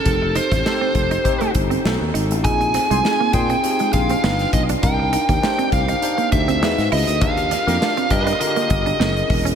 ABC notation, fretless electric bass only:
X:1
M:4/4
L:1/16
Q:"Swing 16ths" 1/4=101
K:Eb
V:1 name="Fretless electric bass" clef=bass
F,,,3 =A,,, z2 F,,,2 z2 G,,,2 =B,,, ^D,, _A,,, =A,,, | B,,,3 C,, z2 B,,2 z2 B,,,2 G,,,2 =B,,,2 | C,,3 E,, z2 C,,2 z2 D,,2 =E,, ^G,, _D,, =D,, | E,,3 F,, z2 G,,2 z2 G,,,2 _G,,,2 _F,,,2 |]